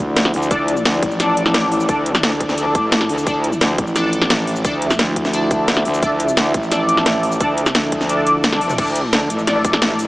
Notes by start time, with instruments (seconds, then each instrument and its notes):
Already playing: fm bass D2, ambient pad F3 E4 D5
0.17 snare, closed hi-hat, shaker
0.25 snare
0.34 fm bass D2, open hi-hat, shaker
0.42 shaker
0.51 wobble bass D2, synth stab D4 A4 D5, kick, closed hi-hat, shaker
0.68 closed hi-hat, shaker
0.77 shaker
0.85 fm bass D2, snare, closed hi-hat, shaker
1.03 fm bass A1, kick, closed hi-hat
1.11 shaker
1.20 synth stab D4 A4 D5, snare, closed hi-hat, shaker
1.37 closed hi-hat, shaker
1.46 snare
1.54 snare, closed hi-hat, shaker
1.72 open hi-hat, shaker
1.80 shaker
1.89 wobble bass D2, synth stab D4 A4 D5, kick, closed hi-hat, shaker
2.06 closed hi-hat, shaker
2.15 snare, shaker
2.23 wobble bass D2, snare, closed hi-hat, shaker
2.40 kick, closed hi-hat
2.49 snare, shaker
2.58 synth stab D4 A4 D5, closed hi-hat, shaker
2.75 wobble bass A1, kick, closed hi-hat, shaker
2.92 snare, closed hi-hat, shaker
3.01 snare
3.09 wobble bass D2, open hi-hat, shaker
3.18 shaker
3.27 wobble bass D2, synth stab D4 A4 D5, ambient pad E5, kick, closed hi-hat, shaker
3.44 closed hi-hat, shaker
3.53 shaker
3.61 fm bass D2, snare, closed hi-hat, shaker
3.78 fm bass A1, kick, closed hi-hat
3.87 shaker
3.96 synth stab D4 A4 D5, snare, closed hi-hat, shaker
4.13 closed hi-hat, shaker
4.22 snare
4.30 snare, closed hi-hat, shaker
4.47 open hi-hat, shaker
4.56 shaker
4.65 wobble bass D2, synth stab D4 A4 D5, kick, closed hi-hat, shaker
4.82 closed hi-hat, shaker
4.91 snare, shaker
4.99 fm bass D2, snare, closed hi-hat, shaker
5.16 kick, closed hi-hat
5.25 snare, shaker
5.34 synth stab D4 A4 D5, closed hi-hat, shaker
5.51 kick, closed hi-hat, shaker
5.68 snare, closed hi-hat, shaker
5.77 snare
5.85 fm bass D2, open hi-hat, shaker
5.94 shaker
6.03 wobble bass D2, synth stab D4 A4 D5, kick, closed hi-hat, shaker
6.20 closed hi-hat, shaker
6.28 shaker
6.37 fm bass D2, snare, closed hi-hat, shaker
6.54 fm bass A1, kick, closed hi-hat
6.63 shaker
6.72 synth stab D4 A4 D5, snare, closed hi-hat, shaker
6.89 closed hi-hat, shaker
6.97 snare
7.06 snare, closed hi-hat, shaker
7.23 open hi-hat, shaker
7.32 shaker
7.40 wobble bass D2, synth stab D4 A4 D5, kick, closed hi-hat, shaker
7.58 closed hi-hat, shaker
7.66 snare, shaker
7.75 wobble bass D2, snare, closed hi-hat, shaker
7.92 kick, closed hi-hat
8.01 snare, shaker
8.09 synth stab D4 A4 D5, closed hi-hat, shaker
8.27 closed hi-hat, shaker
8.44 snare, closed hi-hat, high tom, shaker
8.52 synth stab D4 A4 D5, snare, high tom
8.61 wobble bass F1, open hi-hat, shaker
8.70 mid tom, shaker
8.78 wobble bass D2, ambient pad F3 E4 D5, synth stab D4 A4 D5, kick, closed hi-hat, crash, ride
8.87 shaker
8.96 closed hi-hat, shaker
9.13 wobble bass D2, snare, closed hi-hat, ride
9.30 wobble bass A1, closed hi-hat, shaker
9.39 shaker
9.47 synth stab D4 A4 D5, snare, closed hi-hat, ride
9.65 kick, closed hi-hat, shaker
9.73 snare
9.82 snare, closed hi-hat, ride
9.99 open hi-hat, shaker